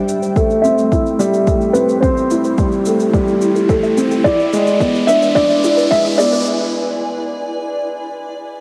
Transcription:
Already playing: upright piano G3, ambient pad A3 D4 C5 G5, felt piano E5, riser
0.09 shaker
0.22 synth arpeggio sound C5, shaker
0.36 upright piano A3, synth arpeggio sound E5, kick, shaker
0.41 ambient pad E4
0.50 synth arpeggio sound G4, shaker
0.62 upright piano C4, synth arpeggio sound A4, felt piano E5, shaker
0.78 synth arpeggio sound C5, shaker
0.92 upright piano E4, kick, shaker
1.06 shaker
1.19 upright piano G3, synth arpeggio sound G4, shaker
1.34 synth arpeggio sound A4, shaker
1.47 upright piano A3, kick, shaker
1.61 synth arpeggio sound E5, shaker
1.73 upright piano C4, felt piano B4, shaker
1.89 synth arpeggio sound A4, shaker
2.01 upright piano C4, synth arpeggio sound G4, felt piano C5, kick, shaker
2.17 synth arpeggio sound A4, shaker
2.31 upright piano E4, shaker
2.44 synth arpeggio sound C5, shaker
2.58 upright piano G3, synth arpeggio sound E5, kick, shaker
2.72 synth arpeggio sound G4, shaker
2.86 upright piano A3, synth arpeggio sound A4, shaker
3.00 synth arpeggio sound C5, shaker
3.14 upright piano G3, kick, shaker
3.27 synth arpeggio sound E5, shaker
3.41 synth arpeggio sound G4, shaker
3.56 synth arpeggio sound A4, shaker
3.69 upright piano A3, synth arpeggio sound C5, kick, shaker
3.83 synth arpeggio sound E5, shaker
3.97 upright piano C4, synth arpeggio sound G4, shaker
4.11 synth arpeggio sound A4, shaker
4.24 upright piano E4, synth arpeggio sound G#4, felt piano D5, kick, shaker
4.37 ambient pad B4, synth arpeggio sound B4, shaker
4.53 upright piano G#3, shaker
4.67 synth arpeggio sound D5, shaker
4.80 upright piano B3, synth arpeggio sound E5, kick, shaker
4.95 synth arpeggio sound G#4, shaker
5.07 upright piano D4, synth arpeggio sound B4, felt piano E5, ambient pad G#5, shaker
5.13 ambient pad D5
5.22 synth arpeggio sound D5, shaker
5.35 upright piano D4, felt piano D5, kick, shaker
5.50 synth arpeggio sound E5, shaker
5.64 upright piano E4, synth arpeggio sound G#4, shaker
5.77 synth arpeggio sound B4, shaker
5.91 upright piano G#3, synth arpeggio sound D5, felt piano E5, kick, shaker
6.05 synth arpeggio sound E5, shaker
6.18 upright piano B3, synth arpeggio sound G#4, felt piano D5, shaker
6.33 synth arpeggio sound B4, shaker

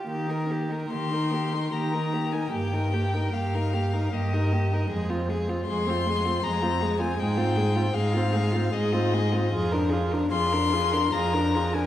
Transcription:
0.07 cello D#3, viola A#3, violin G4
0.27 viola D#4, violin A#4
0.48 viola A#3, violin G4
0.69 viola D#4, violin A#4
0.89 cello D#3, viola A#3, violin C6
0.94 violin G4
1.11 viola D#4, violin A#4
1.31 viola A#3, violin G4
1.53 viola D#4, violin A#4
1.72 cello D#3, viola A#3, violin G4 A#5
1.93 viola D#4, violin A#4
2.13 viola A#3, violin G4
2.32 viola D#4, violin A#4 G#5
2.52 cello G2, viola A#3, violin G4 G5
2.72 viola D#4, violin A#4
2.93 viola A#3, violin G4
3.14 viola D#4, violin A#4
3.33 cello G2, viola A#3, violin G4 F5
3.54 viola D#4, violin A#4
3.74 viola A#3, violin G4
3.93 viola D#4, violin A#4
4.12 cello G2, viola A#3, violin G4 D#5
4.33 viola D#4, violin A#4
4.52 viola A#3, violin G4
4.72 viola D#4, violin A#4
4.89 cello F2, viola G#3, violin G#4
5.09 viola C4, violin F4
5.28 viola G#3, violin G#4
5.48 viola C4, violin F4
5.66 cello F2, viola G#3, violin G#4 C6
5.87 viola C4, violin F4
6.06 viola G#3, violin G#4
6.25 viola C4, violin F4
6.42 cello F2, viola G#3, violin G#4 A#5
6.62 viola C4, violin F4
6.81 viola G#3, violin G#4
7.00 viola C4, violin F4 G#5
7.17 cello G#2, viola G#3, violin G#4 G5
7.37 viola C4, violin F4
7.56 viola G#3, violin G#4
7.75 viola C4, violin F4
7.94 cello G#2, viola G#3, violin G#4 F5
8.13 viola C4, violin F4
8.33 viola G#3, violin G#4
8.52 viola C4, violin F4
8.73 cello G#2, viola G#3, violin G#4 D#5
8.92 viola C4, violin F4
9.13 viola G#3, violin G#4
9.32 viola C4, violin F4
9.52 cello F2, viola F4, violin G#4
9.72 viola D4, violin A#4
9.90 viola F4, violin G#4
10.11 viola D4, violin A#4
10.31 cello F2, viola F4, violin G#4 C6
10.52 viola D4, violin A#4
10.72 viola F4, violin G#4
10.92 viola D4, violin A#4
11.12 cello F2, viola F4, violin G#4 A#5
11.33 viola D4, violin A#4
11.55 viola F4, violin G#4
11.74 viola D4, violin A#4 G#5

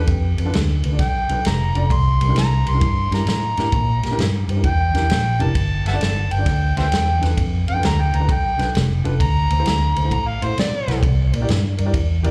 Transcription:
0.07 fingered electric bass F2, kick, ride
0.37 fingered electric bass F2, upright piano A4 B4, ride
0.45 upright piano D4 F4 A4 B4
0.54 fingered electric bass D2, snare, ride
0.83 fingered electric bass D2, upright piano A4 B4, ride
0.91 upright piano D4 F4 A4 D5
0.99 fingered electric bass B1, harmonica G5, kick, snare, ride
1.29 fingered electric bass B1, upright piano D4 F4 A4 B4, ride
1.45 fingered electric bass F1, harmonica A#5, snare, ride
1.75 fingered electric bass F1, upright piano D4 F4 A4 D5, ride
1.90 fingered electric bass C2, harmonica C6, kick, ride
2.20 fingered electric bass C2, upright piano G4 A#4, ride
2.28 upright piano D4 E4 G4 A#4
2.36 fingered electric bass C2, harmonica A#5, snare, ride
2.65 fingered electric bass C2, upright piano G4 A#4, ride
2.70 upright piano D4, harmonica C6
2.75 upright piano E4 G4 A#4
2.81 fingered electric bass G2, kick, ride
3.11 fingered electric bass G2, upright piano D4 E4 G4 A#4, harmonica A#5, snare, ride
3.26 fingered electric bass A2, snare, ride
3.57 fingered electric bass A2, upright piano D4 E4 G4 A#4, snare, ride
3.72 fingered electric bass A#2, kick, ride
4.03 fingered electric bass A#2, upright piano G4 A#4, snare, ride
4.11 upright piano D4 E4 G4 A#4
4.18 fingered electric bass G2, snare, ride
4.48 fingered electric bass G2, upright piano G4 C5, ride
4.56 upright piano D4 E4 G4 A#4
4.64 fingered electric bass E2, harmonica G5, kick, ride
4.94 fingered electric bass E2, upright piano D4 E4 G4 A#4, snare, ride
5.10 fingered electric bass A#1, snare, ride
5.39 fingered electric bass F1, upright piano D4 E4 G4 A#4, harmonica A5, ride
5.55 fingered electric bass G1, kick, ride
5.85 fingered electric bass G1, upright piano A4 B4, harmonica E5 F#5 A5, snare, ride
5.92 upright piano D4 F4 A4 D5
6.00 fingered electric bass G1, snare, ride
6.30 fingered electric bass G1, upright piano A4 B4, harmonica G5, ride
6.38 upright piano D4 F4 A4 D5
6.46 fingered electric bass D2, kick, snare, ride
6.77 fingered electric bass D2, upright piano D4 F4 A4 B4, harmonica C5 E5 G5, snare, ride
6.92 fingered electric bass E2, snare, ride
7.21 fingered electric bass E2, upright piano D4 F4 A4 B4, snare, ride
7.37 fingered electric bass F2, kick, ride
7.67 fingered electric bass F2, upright piano A4 B4, harmonica G5, ride
7.74 upright piano D4 F4 A4 B4
7.83 fingered electric bass D2, harmonica A#5, snare, ride
8.01 harmonica G5
8.12 fingered electric bass D2, upright piano A4 B4, ride
8.17 upright piano D4 F4, harmonica A#5
8.21 upright piano A4 B4
8.29 fingered electric bass B1, harmonica G5, kick, ride
8.58 fingered electric bass B1, upright piano D4 F4 A4 B4, snare, ride
8.74 fingered electric bass F1, snare, ride
9.04 fingered electric bass F1, upright piano D4 F4 A4 B4, ride
9.20 fingered electric bass D2, harmonica A#5, kick, ride
9.50 fingered electric bass D2, upright piano A4 C5, ride
9.58 upright piano E4 F#4 A4 C5
9.66 fingered electric bass D2, snare, ride
9.95 fingered electric bass D2, upright piano A4 C5, ride
10.04 upright piano E4 F#4 A4 C5
10.11 fingered electric bass A2, harmonica A#5, kick, ride
10.27 harmonica F5
10.41 fingered electric bass A2, upright piano E4 F#4 A4 C5, harmonica C5, ride
10.58 fingered electric bass B2, harmonica D5, snare, ride
10.87 fingered electric bass B1, upright piano E4 F#4 A4 C5, snare, ride
11.03 fingered electric bass C2, kick, ride
11.33 fingered electric bass A#2, upright piano A#4 D5, ride
11.40 upright piano E4 G4 A#4 D5
11.49 fingered electric bass G2, snare, ride
11.77 fingered electric bass G2, upright piano A#4 D5, ride
11.85 upright piano E4 G4 A#4 D5
11.94 fingered electric bass E2, kick, ride
12.23 fingered electric bass E2, upright piano E4 G4 A#4 D5, ride

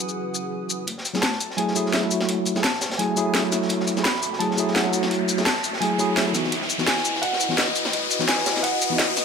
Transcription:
Already playing: analog synth pad C#3 E3 F#4 G#4 B4 D#6, tine electric piano F#3 C#4 E4 F#4 B4, grand piano F#5
0.09 shaker
0.35 shaker
0.70 shaker
0.87 upright bass F#1, analog synth pad F#4 A4 E5, closed hi-hat, riser
0.98 snare
1.05 closed hi-hat, shaker
1.14 tine electric piano F#3 A3 E4 G#4, snare, shaker
1.21 upright bass A1, grand piano A5, snare, closed hi-hat
1.32 snare
1.40 upright bass F#1, closed hi-hat, shaker
1.50 snare
1.57 tine electric piano F#3 A3 E4 G#4, grand piano G#5, closed hi-hat
1.68 snare
1.75 upright bass B1, tine electric piano F#3 A3 E4 G#4, closed hi-hat, shaker
1.86 snare
1.92 grand piano E5, snare, closed hi-hat
2.02 tine electric piano F#3 A3 E4 A4, snare
2.09 tine electric piano F#3 A3 E4, closed hi-hat, shaker
2.13 tine electric piano F#4
2.21 snare
2.29 upright bass F#1, closed hi-hat
2.45 closed hi-hat, shaker
2.55 tine electric piano F#3 A3 E4 G#4, snare, shaker
2.63 upright bass A1, grand piano A5, snare, closed hi-hat
2.74 snare
2.81 upright bass F#1, snare, closed hi-hat, shaker
2.91 snare, closed hi-hat
2.98 tine electric piano F#3 A3 E4 G#4, grand piano G#5, closed hi-hat
3.16 tine electric piano F#3 A3 E4 G#4, closed hi-hat, shaker
3.33 grand piano E5, snare, closed hi-hat
3.43 tine electric piano F#3 A3 E4 A4
3.50 tine electric piano F#3 A3 E4, snare, closed hi-hat, shaker
3.55 tine electric piano F#4
3.62 snare
3.69 upright bass F#1, closed hi-hat
3.80 snare
3.87 closed hi-hat, shaker
3.96 tine electric piano F#3 A3 E4 G#4, snare, shaker
4.03 upright bass A1, grand piano B5, snare, closed hi-hat
4.15 snare
4.23 upright bass F#1, closed hi-hat, shaker
4.33 snare
4.39 tine electric piano F#3 A3 E4 G#4, grand piano A5, closed hi-hat
4.51 snare
4.57 upright bass B1, tine electric piano F#3 A3 E4 G#4, closed hi-hat, shaker
4.68 snare
4.74 grand piano F#5, snare, closed hi-hat
4.84 tine electric piano F#3 A3 E4 A4, snare
4.91 tine electric piano F#3 A3 E4, closed hi-hat, shaker
4.96 tine electric piano F#4
5.03 snare
5.11 upright bass F#1, closed hi-hat
5.28 closed hi-hat, shaker
5.37 tine electric piano F#3 A3 E4 G#4, snare, shaker
5.45 upright bass A1, grand piano A5, snare, closed hi-hat
5.57 snare
5.64 upright bass F#1, closed hi-hat, shaker
5.73 snare
5.80 tine electric piano F#3 A3 E4 G#4, grand piano G#5, closed hi-hat
5.98 tine electric piano F#3 A3 E4 G#4, closed hi-hat, shaker
6.09 upright bass F#1
6.15 grand piano E5, snare, closed hi-hat
6.25 tine electric piano F#3 A3 E4 A4
6.33 upright bass C#2, tine electric piano E3 B3 D#4, snare, closed hi-hat, shaker
6.37 tine electric piano F#4
6.44 snare
6.52 upright bass C#2, analog synth pad E4 F#4 B4 D#5, closed hi-hat
6.62 snare
6.69 closed hi-hat, shaker
6.78 tine electric piano E3 B3 D#4 F#4, snare, shaker
6.86 upright bass E2, grand piano G#5, snare, closed hi-hat
6.98 snare
7.05 upright bass C#2, closed hi-hat, shaker
7.15 snare
7.22 grand piano F#5, closed hi-hat
7.33 snare
7.40 upright bass F#2, closed hi-hat, shaker
7.49 tine electric piano E3 B3 D#4 F#4, snare
7.57 grand piano D#5, snare, closed hi-hat
7.68 snare
7.76 closed hi-hat, shaker
7.85 snare
7.93 upright bass C#2, closed hi-hat
8.10 closed hi-hat, shaker
8.20 tine electric piano E3 B3 D#4 F#4, snare, shaker
8.28 upright bass E2, grand piano G#5, snare, closed hi-hat
8.38 snare
8.46 upright bass C#2, snare, closed hi-hat, shaker
8.56 snare, closed hi-hat
8.63 grand piano F#5, closed hi-hat
8.81 closed hi-hat, shaker
8.90 tine electric piano E3 B3 D#4 F#4
8.98 grand piano D#5, snare, closed hi-hat
9.17 snare, closed hi-hat, shaker

